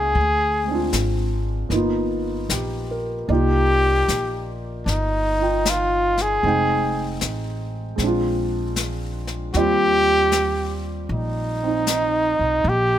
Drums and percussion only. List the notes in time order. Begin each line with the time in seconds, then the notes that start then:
0.15 brush sweep
0.93 snare, hi-hat pedal
1.71 brush sweep, snare
2.50 snare, hi-hat pedal
3.30 brush sweep
4.08 snare, hi-hat pedal
4.87 brush sweep, snare
5.65 snare, hi-hat pedal
6.17 snare
6.43 brush sweep
7.21 snare, hi-hat pedal
7.98 brush sweep, snare
8.76 snare, hi-hat pedal
9.27 snare
9.54 brush sweep, snare
10.32 snare, hi-hat pedal
11.10 brush sweep
11.87 snare, hi-hat pedal
12.65 brush sweep